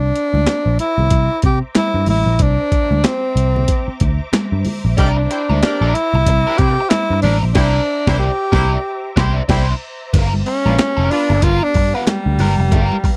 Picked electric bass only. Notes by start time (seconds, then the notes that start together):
Already playing: C2
0.34 D2
0.46 muted picked electric bass stroke
0.66 A#1
0.98 C2
1.11 C2
1.44 C3
1.94 G2
2.07 A1
2.26 A#1
2.40 C2
2.91 D2
3.36 C2
3.88 muted picked electric bass stroke
4.01 D2
4.33 muted picked electric bass stroke
4.52 G2
4.85 A#1
4.98 C2
5.50 D2
5.62 muted picked electric bass stroke
5.81 A#1
6.14 C2
6.26 C2
6.59 C3
7.10 G2
7.24 A1
7.43 A#1
7.56 C2
8.07 C2
8.53 C2
9.17 C2
9.49 C2
10.14 G1
10.66 A#1
10.79 muted picked electric bass stroke
10.98 F1
11.30 G1
11.42 G1
11.75 G2
12.26 D2
12.39 G1
12.58 F1
12.72 G1